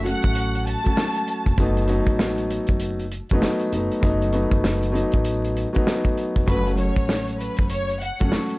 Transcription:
Already playing: F#1
0.03 F#3 A3 C#4 F#4 F#5, closed hi-hat
0.22 A1, kick, closed hi-hat
0.35 closed hi-hat
0.55 closed hi-hat
0.67 A5, closed hi-hat
0.84 F#3 A3 C#4 F#4, kick, closed hi-hat
0.97 snare
1.15 closed hi-hat
1.28 closed hi-hat
1.46 F1, kick, closed hi-hat
1.58 F#1 F#3 A3 B3 D#4, kick, closed hi-hat
1.77 closed hi-hat
1.87 F#3 A3 B3 D#4, closed hi-hat
2.06 A1, kick, closed hi-hat
2.19 snare
2.38 closed hi-hat
2.50 closed hi-hat
2.67 F#1, kick, closed hi-hat
2.80 closed hi-hat
2.99 closed hi-hat
3.11 closed hi-hat
3.29 F#1 F#3 A3 B3, kick, closed hi-hat
3.34 D#4
3.42 snare
3.59 closed hi-hat
3.72 F#1 F#3 A3 B3 D#4, closed hi-hat
3.91 closed hi-hat
4.01 F#1 F#3 A3 B3 D#4, kick, closed hi-hat
4.22 closed hi-hat
4.32 F#3 A3 B3 D#4, closed hi-hat
4.51 F#1, kick, closed hi-hat
4.64 snare
4.83 closed hi-hat
4.92 F#3 A3 B3 D#4, closed hi-hat
5.12 A1, kick, closed hi-hat
5.25 closed hi-hat
5.44 closed hi-hat
5.57 closed hi-hat
5.73 F#3 A3 B3 D#4, kick, closed hi-hat
5.87 snare
6.04 kick, closed hi-hat
6.17 closed hi-hat
6.36 F1, kick, closed hi-hat
6.46 F#1 F#3 A3 C#4 F#4 B4, kick, closed hi-hat
6.67 closed hi-hat
6.76 F#3 A3 C#4 F#4 C#5, closed hi-hat
6.96 A1, kick, closed hi-hat
7.09 snare
7.28 closed hi-hat
7.39 B4, closed hi-hat
7.57 F#1, kick, closed hi-hat
7.70 C#5, closed hi-hat
7.89 closed hi-hat
8.00 F#5, closed hi-hat
8.19 F#1 F#3 A3 C#4 F#4, kick, closed hi-hat
8.32 snare
8.49 closed hi-hat

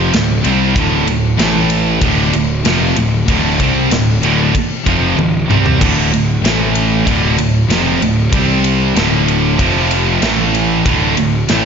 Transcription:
Already playing: F1 F2 C3 F3
0.12 D1 D2 A2, snare, ride
0.42 C2 C3 G3 C4, ride
0.73 D1 D2 A2 D3, kick, ride
0.78 A2
1.05 D1 D2 A2, ride
1.11 D2 A2
1.37 A1 A2 E3 A3, snare, ride
1.42 E3 A3
1.70 ride
1.99 D1 D2 A2 D3, kick, ride
2.31 D1 D2 A2, ride
2.35 D2 A2
2.63 F1 F2 C3 F3, snare, ride
2.94 D1 D2 A2, ride
3.25 D1 D2 A2 D3, kick, ride
3.58 C2 C3 G3 C4, kick, ride
3.89 D1 D2 A2, snare, ride
4.21 D1 D2 A2 D3, ride
4.52 muted overdriven electric guitar stroke, muted distorted electric guitar stroke, muted picked electric bass stroke, kick, ride
4.84 F1 F2 C3 F3, kick, ride
5.16 D1 D2 A2, high tom
5.47 C2 C3 G3 C4, mid tom
5.66 floor tom
5.80 D1 D2 A2 D3, kick, crash
6.12 D1 D2 A2, ride
6.41 A1 A2 E3 A3, ride
6.46 snare
6.75 ride
7.05 D1 D2 A2 D3, kick, ride
7.37 D1 D2 A2, ride
7.68 F1 F2 C3 F3, snare, ride
7.99 D1 D2 A2, ride
8.03 D2
8.31 C2 C3 G3 C4, kick, ride
8.64 ride
8.94 D1 D2 A2 D3, snare, ride
9.28 ride
9.57 F1 F2 C3 F3, kick, ride
9.91 ride
10.22 A1 A2 E3 A3, snare, ride
10.55 ride
10.86 D1 D2 A2 D3, kick, ride
11.17 D1 D2 A2, ride
11.49 A1 A2 E3 A3, snare, ride

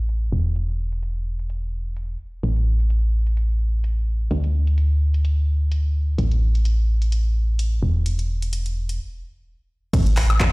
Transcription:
Already playing: A1
0.09 closed hi-hat
0.32 E1
0.56 closed hi-hat
0.69 closed hi-hat
0.92 closed hi-hat
1.03 closed hi-hat
1.39 closed hi-hat
1.50 closed hi-hat
1.97 closed hi-hat
2.43 A1, closed hi-hat
2.56 closed hi-hat
2.80 closed hi-hat
2.90 closed hi-hat
3.27 closed hi-hat
3.37 closed hi-hat
3.84 closed hi-hat
4.31 D2, closed hi-hat
4.44 closed hi-hat
4.67 closed hi-hat
4.78 closed hi-hat
5.14 closed hi-hat
5.25 closed hi-hat
5.72 closed hi-hat
6.18 A1, closed hi-hat
6.32 closed hi-hat
6.55 closed hi-hat
6.65 closed hi-hat
7.02 closed hi-hat
7.12 closed hi-hat
7.59 closed hi-hat
7.83 E1
8.06 closed hi-hat
8.19 closed hi-hat
8.42 closed hi-hat
8.53 closed hi-hat
8.66 closed hi-hat
8.89 closed hi-hat
9.93 A1, kick, closed hi-hat, crash
10.06 closed hi-hat
10.17 clap, open hi-hat
10.30 closed hi-hat, high woodblock
10.40 kick, clap, closed hi-hat

